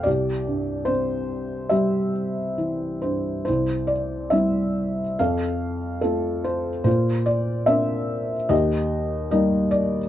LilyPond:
<<
  \new Staff \with { instrumentName = "Felt piano" } { \time 4/4 \key c \mixolydian \tempo 4 = 72 << { d''4 c''4 e''4. c''8 | c''8 d''8 e''4 f''4 a'8 c''8 | c''8 d''8 e''4 ees''4 ees''8 d''8 | } \\ { g'2 g'2 | e'2 a'2 | f'2 g'2 | } >> }
  \new Staff \with { instrumentName = "Felt piano" } { \clef bass \time 4/4 \key c \mixolydian c,8 g,8 c4 g4 e8 g,8 | c,4 <g c' e'>4 f,4 <a c' f'>4 | bes,4 <bes c' d'>4 ees,4 <g bes ees'>4 | }
>>